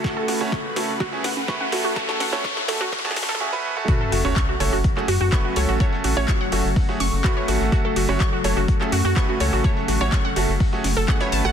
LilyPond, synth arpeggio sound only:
\new Staff \with { instrumentName = "Synth arpeggio sound" } { \time 4/4 \key fis \minor \tempo 4 = 125 fis'16 a'16 fis'16 fis''16 cis'''16 r16 fis'16 r16 fis'16 r16 fis''16 r16 cis'''16 fis''16 fis'16 fis'16 | a''16 a''16 fis''16 a'16 cis'''16 r16 a'16 fis'16 r16 a''16 r16 a'16 r4 | fis'16 a'16 fis'16 fis'16 cis'''16 fis'16 cis''16 fis'16 r16 a'16 fis'16 fis'16 cis'''16 fis'16 cis''16 fis'16 | cis''16 r16 fis'16 cis''16 cis'''16 fis''16 fis'16 r8. cis'''16 r16 fis'16 cis''16 fis'16 r16 |
fis'16 a'16 fis'16 fis'16 cis'''16 fis'16 cis''16 fis'16 r16 a'16 fis'16 fis'16 cis'''16 fis'16 cis''16 fis'16 | cis''16 r16 fis'16 cis''16 cis'''16 fis''16 fis'16 r4 a'16 fis''16 cis''16 a''16 fis''16 | }